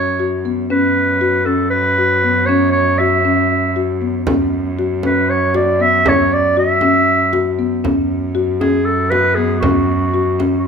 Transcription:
Already playing: cello F#2, clarinet C#5
0.20 marimba F#4
0.45 marimba B3
0.70 cello F#2, marimba C#4, clarinet B4
1.21 marimba F#4
1.45 marimba C#4, clarinet A4
1.70 clarinet B4
1.98 marimba F#4
2.24 marimba B3
2.46 marimba C#4, clarinet C#5
2.72 clarinet C#5
2.98 marimba F#4, clarinet E5
3.25 marimba C#4
3.76 marimba F#4
4.01 marimba B3
4.27 cello F#2, marimba C#4, frame drum
4.79 marimba F#4, frame drum
5.03 marimba C#4, clarinet B4, frame drum
5.30 clarinet C#5
5.54 marimba F#4, clarinet D5, frame drum
5.80 marimba B3, clarinet E5
6.05 marimba C#4, clarinet C#5, frame drum
6.33 clarinet D5
6.56 marimba F#4, clarinet E5, frame drum
6.81 marimba C#4, frame drum
7.33 marimba F#4, frame drum
7.59 marimba B3
7.84 cello F#2, marimba C#4, frame drum
8.35 marimba F#4, frame drum
8.61 marimba C#4, clarinet G#4, frame drum
8.86 clarinet A4
9.10 marimba F#4, clarinet B4, frame drum
9.35 marimba B3, clarinet G#4
9.60 marimba C#4, clarinet F#4, frame drum
10.14 marimba F#4, frame drum
10.39 marimba C#4, frame drum
10.59 clarinet F#4

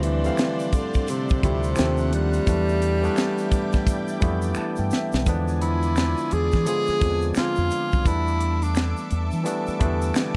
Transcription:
Already playing: fingered electric bass D2, tine electric piano F3 G3 A3 C4 E4, analog synth pad D4 C5 D5
0.03 tenor saxophone E3, closed hi-hat
0.23 tine electric piano D3 G3 A3 C4 F5, closed hi-hat, shaker
0.37 finger snap, snare, closed hi-hat, shaker
0.59 shaker
0.73 tenor saxophone D3, kick, closed hi-hat, shaker
0.93 kick, closed hi-hat, shaker
1.08 tenor saxophone C3, closed hi-hat, shaker
1.29 kick, shaker
1.42 fingered electric bass D2, tenor saxophone C3, tine electric piano F3 G3 A3 C4 E4, kick, closed hi-hat
1.63 closed hi-hat, shaker
1.76 fingered electric bass D#2, tine electric piano D#3 F3 A3 C4 D4, analog synth pad D#3 F#5, finger snap, snare, closed hi-hat, shaker
1.97 shaker
2.13 tenor saxophone G3, closed hi-hat
2.33 closed hi-hat, shaker
2.46 fingered electric bass E2, tine electric piano E3 F#3 A3 B3 D4, analog synth pad E4 D5 G5, kick, closed hi-hat, shaker
2.53 tine electric piano G3
2.69 shaker
2.82 closed hi-hat
3.02 tine electric piano E3 G3 A3 B3 D4, shaker
3.16 finger snap, snare, closed hi-hat, shaker
3.38 shaker
3.51 kick, closed hi-hat, shaker
3.72 kick, snare, closed hi-hat, shaker
3.87 kick, closed hi-hat, shaker
4.08 shaker
4.20 fingered electric bass F2, tine electric piano E3 G3 A3 B3 E4, kick, closed hi-hat, shaker
4.42 closed hi-hat, shaker
4.55 tine electric piano A5, finger snap, muted fingered electric bass stroke, shaker
4.76 fingered electric bass G2, tine electric piano G5, shaker
4.91 tine electric piano E5, snare, shaker
5.12 fingered electric bass B1, snare, shaker
5.26 fingered electric bass E2, tine electric piano D3 F3 G#3 B3 D4, analog synth pad F3 D5 G#5, kick, closed hi-hat, shaker
5.48 shaker
5.62 tenor saxophone E4, closed hi-hat
5.83 closed hi-hat, shaker
5.96 finger snap, snare, closed hi-hat, shaker
6.17 shaker
6.31 fingered electric bass E2, tenor saxophone G#4, closed hi-hat
6.52 fingered electric bass E3, kick, snare, closed hi-hat, shaker
6.65 tine electric piano D3 F3 G#3 B3 F4, tenor saxophone G#4, closed hi-hat, shaker
6.87 muted fingered electric bass stroke, snare, shaker
7.00 fingered electric bass E2, tine electric piano D3 F3 G#3 B3 C4, kick, closed hi-hat
7.10 tine electric piano D4
7.22 shaker
7.35 tenor saxophone F4, finger snap, muted fingered electric bass stroke, snare, closed hi-hat, shaker
7.56 fingered electric bass F2, shaker
7.70 closed hi-hat, shaker
7.92 fingered electric bass B1, kick, shaker
8.04 fingered electric bass E2, tine electric piano E3 G3 A3 B3 D4, tenor saxophone E4, analog synth pad A4 E5 D6, kick, closed hi-hat, shaker
8.28 shaker
8.41 closed hi-hat
8.62 tenor saxophone D4, closed hi-hat, shaker
8.75 finger snap, snare, closed hi-hat, shaker
8.97 shaker
9.11 fingered electric bass E2, closed hi-hat
9.31 fingered electric bass E3, shaker
9.44 tine electric piano E3 G3 A3 B3 D4, closed hi-hat, shaker
9.67 muted fingered electric bass stroke, shaker
9.78 fingered electric bass E2, tine electric piano D3 G3 A3 B3 D4, kick, closed hi-hat
9.85 tine electric piano E3
10.02 closed hi-hat, shaker
10.14 finger snap, snare, closed hi-hat, shaker

